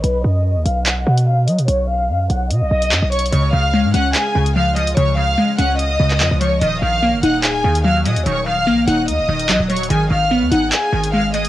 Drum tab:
HH |x-----------------x-----x--------x--------x--x--|x-----------------x-----x--------x--x-----x-x-x-|x-----------------x-----x--------x--------x--x--|x-----------------x-----x--------x--x-----x-----|
CP |------------------------x-----------------------|------------------------------------x-----------|------------------------x-----------------------|---------------------------------x--x-----------|

HH |x-----------------x-----x--------x--------x--x--|x-----------------x-----x--------x--x-----x-x-x-|x-----------------x-----x--------x--------x--x--|
CP |------------------------x-----------------------|------------------------------------x-----------|------------------------x-----------------------|